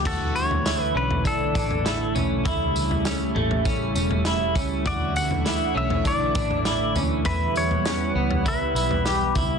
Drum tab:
CC |x---------------|----------------|----------------|----------------|
TB |x-x-x---x-x-x-x-|x-x-x---x-x-x-x-|x-x-x---x-x-x-x-|x-x-x---x-x-x-x-|
SD |----o-------o---|----o-------o---|----o-------o---|----o-------o---|
FT |o--o---o---o--o-|o--o--oo---o----|o--o---o---o--o-|o--o---o---o--o-|
BD |o-------o-o-----|o-------o-----o-|o-------o-o-----|o-------o-----o-|